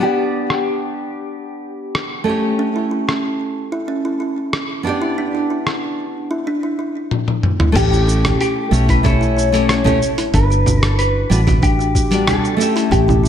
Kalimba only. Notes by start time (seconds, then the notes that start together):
2.59 C#4
2.76 E4
2.91 E4
3.72 E4
3.88 C#4
4.05 E4
4.20 E4
5.02 E4
5.18 D4
5.35 E4
5.50 E4
6.31 E4
6.47 D4
6.63 E4
6.79 E4
7.60 E4
7.76 C#4
7.92 E4
8.07 E4
8.89 E4
9.04 C#4
9.21 E4
9.37 E4
10.18 E4
10.34 D4
10.50 F#4
10.66 F#4
11.47 F#4
11.62 D4
11.79 F#4
11.95 F#4
12.76 E4
12.91 C#4
13.08 E4
13.24 E4